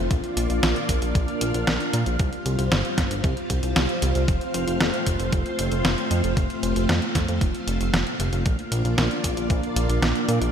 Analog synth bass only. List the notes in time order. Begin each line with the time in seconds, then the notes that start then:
0.11 A#1
0.37 A#1
0.50 A#1
0.63 A#1
0.89 A#1
1.02 A#1
1.15 A#1
1.41 A#1
1.54 A#1
1.67 A#1
1.93 A#2
2.06 A#1
2.20 C2
2.46 C2
2.59 C2
2.72 G1
2.98 G1
3.11 G1
3.24 C2
3.50 C2
3.63 C2
3.76 C2
4.02 C2
4.16 C2
4.28 F1
4.54 F1
4.67 F1
4.81 F1
5.06 F1
5.20 F1
5.33 F1
5.59 F1
5.72 F1
5.85 F1
6.11 F2
6.24 F1
6.37 F1
6.63 F1
6.76 F1
6.89 F2
7.15 F2
7.29 F2
7.41 F1
7.67 F1
7.80 F1
7.93 F1
8.19 F1
8.33 F1
8.46 A#1
8.72 A#1
8.85 A#1
8.98 A#1
9.24 A#1
9.37 A#1
9.50 A#1
9.76 A#1
9.89 A#1
10.02 A#1
10.28 A#2
10.41 A#1